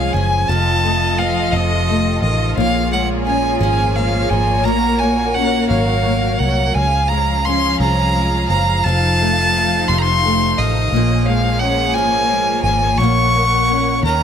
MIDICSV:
0, 0, Header, 1, 5, 480
1, 0, Start_track
1, 0, Tempo, 694444
1, 344, Time_signature, 6, 3, 24, 8
1, 9836, End_track
2, 0, Start_track
2, 0, Title_t, "Violin"
2, 0, Program_c, 0, 40
2, 0, Note_on_c, 0, 77, 78
2, 94, Note_on_c, 0, 80, 89
2, 104, Note_off_c, 0, 77, 0
2, 335, Note_on_c, 0, 81, 95
2, 345, Note_off_c, 0, 80, 0
2, 821, Note_on_c, 0, 77, 86
2, 831, Note_off_c, 0, 81, 0
2, 1055, Note_on_c, 0, 75, 88
2, 1066, Note_off_c, 0, 77, 0
2, 1535, Note_off_c, 0, 75, 0
2, 1539, Note_on_c, 0, 75, 78
2, 1763, Note_off_c, 0, 75, 0
2, 1781, Note_on_c, 0, 77, 99
2, 2003, Note_off_c, 0, 77, 0
2, 2024, Note_on_c, 0, 78, 85
2, 2131, Note_off_c, 0, 78, 0
2, 2257, Note_on_c, 0, 80, 87
2, 2481, Note_off_c, 0, 80, 0
2, 2494, Note_on_c, 0, 80, 94
2, 2733, Note_on_c, 0, 77, 86
2, 2743, Note_off_c, 0, 80, 0
2, 2971, Note_on_c, 0, 80, 90
2, 2981, Note_off_c, 0, 77, 0
2, 3208, Note_on_c, 0, 82, 105
2, 3218, Note_off_c, 0, 80, 0
2, 3448, Note_on_c, 0, 80, 87
2, 3458, Note_off_c, 0, 82, 0
2, 3693, Note_on_c, 0, 78, 91
2, 3704, Note_off_c, 0, 80, 0
2, 3933, Note_off_c, 0, 78, 0
2, 3937, Note_on_c, 0, 77, 90
2, 4415, Note_on_c, 0, 78, 88
2, 4426, Note_off_c, 0, 77, 0
2, 4660, Note_on_c, 0, 80, 95
2, 4670, Note_off_c, 0, 78, 0
2, 4898, Note_on_c, 0, 82, 95
2, 4908, Note_off_c, 0, 80, 0
2, 5150, Note_on_c, 0, 84, 102
2, 5160, Note_off_c, 0, 82, 0
2, 5391, Note_off_c, 0, 84, 0
2, 5395, Note_on_c, 0, 82, 100
2, 5848, Note_off_c, 0, 82, 0
2, 5871, Note_on_c, 0, 82, 95
2, 6112, Note_on_c, 0, 81, 114
2, 6122, Note_off_c, 0, 82, 0
2, 6830, Note_on_c, 0, 84, 105
2, 6840, Note_off_c, 0, 81, 0
2, 6901, Note_on_c, 0, 82, 81
2, 6912, Note_off_c, 0, 84, 0
2, 6926, Note_on_c, 0, 84, 112
2, 6937, Note_off_c, 0, 82, 0
2, 7314, Note_on_c, 0, 75, 95
2, 7325, Note_off_c, 0, 84, 0
2, 7784, Note_on_c, 0, 77, 97
2, 7795, Note_off_c, 0, 75, 0
2, 8014, Note_on_c, 0, 78, 98
2, 8025, Note_off_c, 0, 77, 0
2, 8255, Note_on_c, 0, 80, 112
2, 8266, Note_off_c, 0, 78, 0
2, 8728, Note_off_c, 0, 80, 0
2, 8732, Note_on_c, 0, 80, 96
2, 8971, Note_on_c, 0, 85, 115
2, 8982, Note_off_c, 0, 80, 0
2, 9698, Note_off_c, 0, 85, 0
2, 9710, Note_on_c, 0, 82, 110
2, 9836, Note_off_c, 0, 82, 0
2, 9836, End_track
3, 0, Start_track
3, 0, Title_t, "String section"
3, 0, Program_c, 1, 48
3, 0, Note_on_c, 1, 53, 80
3, 0, Note_on_c, 1, 61, 70
3, 0, Note_on_c, 1, 68, 69
3, 0, Note_on_c, 1, 80, 77
3, 323, Note_off_c, 1, 68, 0
3, 324, Note_off_c, 1, 53, 0
3, 324, Note_off_c, 1, 61, 0
3, 326, Note_off_c, 1, 80, 0
3, 336, Note_on_c, 1, 65, 73
3, 339, Note_on_c, 1, 75, 87
3, 344, Note_on_c, 1, 53, 78
3, 345, Note_on_c, 1, 69, 77
3, 1765, Note_off_c, 1, 75, 0
3, 1768, Note_off_c, 1, 53, 0
3, 1768, Note_off_c, 1, 69, 0
3, 1790, Note_on_c, 1, 73, 91
3, 1793, Note_on_c, 1, 68, 82
3, 1794, Note_on_c, 1, 58, 90
3, 3189, Note_off_c, 1, 65, 0
3, 3212, Note_off_c, 1, 68, 0
3, 3219, Note_on_c, 1, 66, 86
3, 3219, Note_on_c, 1, 70, 79
3, 4649, Note_off_c, 1, 73, 0
3, 4651, Note_off_c, 1, 58, 0
3, 4657, Note_off_c, 1, 66, 0
3, 4657, Note_off_c, 1, 70, 0
3, 4671, Note_on_c, 1, 53, 79
3, 4674, Note_on_c, 1, 61, 76
3, 4678, Note_on_c, 1, 68, 72
3, 4682, Note_on_c, 1, 77, 87
3, 6100, Note_off_c, 1, 53, 0
3, 6102, Note_off_c, 1, 61, 0
3, 6104, Note_off_c, 1, 68, 0
3, 6116, Note_on_c, 1, 63, 74
3, 6118, Note_on_c, 1, 53, 81
3, 6120, Note_on_c, 1, 69, 68
3, 7527, Note_off_c, 1, 77, 0
3, 7535, Note_off_c, 1, 63, 0
3, 7536, Note_off_c, 1, 53, 0
3, 7537, Note_off_c, 1, 69, 0
3, 7560, Note_on_c, 1, 68, 77
3, 7563, Note_on_c, 1, 58, 87
3, 7568, Note_on_c, 1, 73, 90
3, 7570, Note_on_c, 1, 53, 76
3, 8970, Note_off_c, 1, 68, 0
3, 8973, Note_on_c, 1, 78, 90
3, 8975, Note_off_c, 1, 53, 0
3, 8981, Note_on_c, 1, 70, 74
3, 9687, Note_off_c, 1, 58, 0
3, 9692, Note_off_c, 1, 78, 0
3, 9694, Note_on_c, 1, 82, 78
3, 9695, Note_off_c, 1, 70, 0
3, 9698, Note_on_c, 1, 63, 72
3, 9701, Note_on_c, 1, 51, 79
3, 9836, Note_off_c, 1, 51, 0
3, 9836, Note_off_c, 1, 63, 0
3, 9836, Note_off_c, 1, 73, 0
3, 9836, Note_off_c, 1, 82, 0
3, 9836, End_track
4, 0, Start_track
4, 0, Title_t, "Nylon-string guitar"
4, 0, Program_c, 2, 24
4, 0, Note_on_c, 2, 53, 68
4, 0, Note_on_c, 2, 56, 58
4, 0, Note_on_c, 2, 61, 60
4, 94, Note_off_c, 2, 53, 0
4, 97, Note_on_c, 2, 53, 60
4, 341, Note_on_c, 2, 41, 88
4, 388, Note_off_c, 2, 56, 0
4, 390, Note_off_c, 2, 61, 0
4, 581, Note_on_c, 2, 57, 59
4, 822, Note_on_c, 2, 60, 67
4, 1061, Note_on_c, 2, 48, 76
4, 1300, Note_off_c, 2, 57, 0
4, 1308, Note_on_c, 2, 57, 61
4, 1539, Note_off_c, 2, 53, 0
4, 1541, Note_on_c, 2, 51, 61
4, 1777, Note_off_c, 2, 48, 0
4, 1780, Note_off_c, 2, 41, 0
4, 1780, Note_on_c, 2, 46, 99
4, 1828, Note_off_c, 2, 60, 0
4, 1829, Note_off_c, 2, 51, 0
4, 1832, Note_off_c, 2, 57, 0
4, 2014, Note_on_c, 2, 56, 68
4, 2258, Note_on_c, 2, 61, 70
4, 2492, Note_on_c, 2, 53, 81
4, 2726, Note_off_c, 2, 56, 0
4, 2734, Note_on_c, 2, 56, 59
4, 2964, Note_off_c, 2, 53, 0
4, 2972, Note_on_c, 2, 53, 59
4, 3206, Note_off_c, 2, 46, 0
4, 3214, Note_on_c, 2, 46, 84
4, 3265, Note_off_c, 2, 53, 0
4, 3266, Note_off_c, 2, 56, 0
4, 3463, Note_on_c, 2, 58, 61
4, 3700, Note_off_c, 2, 61, 0
4, 3703, Note_on_c, 2, 61, 58
4, 3943, Note_on_c, 2, 54, 67
4, 4178, Note_off_c, 2, 58, 0
4, 4186, Note_on_c, 2, 58, 59
4, 4418, Note_off_c, 2, 54, 0
4, 4427, Note_on_c, 2, 54, 55
4, 4669, Note_off_c, 2, 46, 0
4, 4719, Note_off_c, 2, 54, 0
4, 4720, Note_off_c, 2, 58, 0
4, 4917, Note_on_c, 2, 56, 63
4, 5158, Note_off_c, 2, 61, 0
4, 5161, Note_on_c, 2, 61, 60
4, 5395, Note_on_c, 2, 53, 74
4, 5634, Note_off_c, 2, 56, 0
4, 5642, Note_on_c, 2, 56, 59
4, 5876, Note_off_c, 2, 53, 0
4, 5878, Note_on_c, 2, 53, 57
4, 6122, Note_on_c, 2, 41, 86
4, 6166, Note_off_c, 2, 61, 0
4, 6167, Note_off_c, 2, 56, 0
4, 6368, Note_on_c, 2, 57, 60
4, 6601, Note_on_c, 2, 60, 62
4, 6847, Note_on_c, 2, 48, 76
4, 7075, Note_off_c, 2, 57, 0
4, 7083, Note_on_c, 2, 57, 57
4, 7318, Note_off_c, 2, 53, 0
4, 7321, Note_on_c, 2, 51, 62
4, 7553, Note_off_c, 2, 41, 0
4, 7555, Note_off_c, 2, 48, 0
4, 7558, Note_on_c, 2, 46, 90
4, 7600, Note_off_c, 2, 60, 0
4, 7602, Note_off_c, 2, 51, 0
4, 7602, Note_off_c, 2, 57, 0
4, 7790, Note_on_c, 2, 56, 62
4, 8025, Note_on_c, 2, 61, 68
4, 8261, Note_on_c, 2, 53, 80
4, 8498, Note_off_c, 2, 56, 0
4, 8507, Note_on_c, 2, 56, 64
4, 8739, Note_off_c, 2, 53, 0
4, 8747, Note_on_c, 2, 53, 65
4, 8980, Note_off_c, 2, 46, 0
4, 8988, Note_on_c, 2, 46, 94
4, 9030, Note_off_c, 2, 53, 0
4, 9030, Note_off_c, 2, 56, 0
4, 9227, Note_on_c, 2, 58, 58
4, 9471, Note_off_c, 2, 61, 0
4, 9473, Note_on_c, 2, 61, 60
4, 9706, Note_off_c, 2, 46, 0
4, 9715, Note_on_c, 2, 51, 85
4, 9754, Note_off_c, 2, 58, 0
4, 9757, Note_off_c, 2, 61, 0
4, 9836, Note_off_c, 2, 51, 0
4, 9836, End_track
5, 0, Start_track
5, 0, Title_t, "Fingered electric bass"
5, 0, Program_c, 3, 33
5, 0, Note_on_c, 3, 36, 96
5, 70, Note_off_c, 3, 36, 0
5, 98, Note_on_c, 3, 30, 93
5, 327, Note_off_c, 3, 30, 0
5, 339, Note_on_c, 3, 29, 110
5, 1034, Note_off_c, 3, 29, 0
5, 1056, Note_on_c, 3, 29, 96
5, 1512, Note_off_c, 3, 29, 0
5, 1537, Note_on_c, 3, 33, 86
5, 1764, Note_off_c, 3, 33, 0
5, 1780, Note_on_c, 3, 34, 100
5, 2470, Note_off_c, 3, 34, 0
5, 2493, Note_on_c, 3, 32, 97
5, 2949, Note_off_c, 3, 32, 0
5, 2976, Note_on_c, 3, 32, 88
5, 3213, Note_off_c, 3, 32, 0
5, 3213, Note_on_c, 3, 34, 99
5, 3915, Note_off_c, 3, 34, 0
5, 3944, Note_on_c, 3, 32, 95
5, 4402, Note_off_c, 3, 32, 0
5, 4425, Note_on_c, 3, 36, 84
5, 4655, Note_off_c, 3, 36, 0
5, 4670, Note_on_c, 3, 37, 102
5, 5367, Note_off_c, 3, 37, 0
5, 5392, Note_on_c, 3, 36, 96
5, 5846, Note_off_c, 3, 36, 0
5, 5873, Note_on_c, 3, 30, 90
5, 6100, Note_off_c, 3, 30, 0
5, 6122, Note_on_c, 3, 29, 115
5, 6810, Note_off_c, 3, 29, 0
5, 6838, Note_on_c, 3, 29, 91
5, 7286, Note_off_c, 3, 29, 0
5, 7318, Note_on_c, 3, 33, 93
5, 7539, Note_off_c, 3, 33, 0
5, 7550, Note_on_c, 3, 34, 110
5, 8265, Note_off_c, 3, 34, 0
5, 8265, Note_on_c, 3, 32, 99
5, 8713, Note_off_c, 3, 32, 0
5, 8734, Note_on_c, 3, 32, 91
5, 8962, Note_off_c, 3, 32, 0
5, 8972, Note_on_c, 3, 34, 99
5, 9671, Note_off_c, 3, 34, 0
5, 9698, Note_on_c, 3, 39, 105
5, 9836, Note_off_c, 3, 39, 0
5, 9836, End_track
0, 0, End_of_file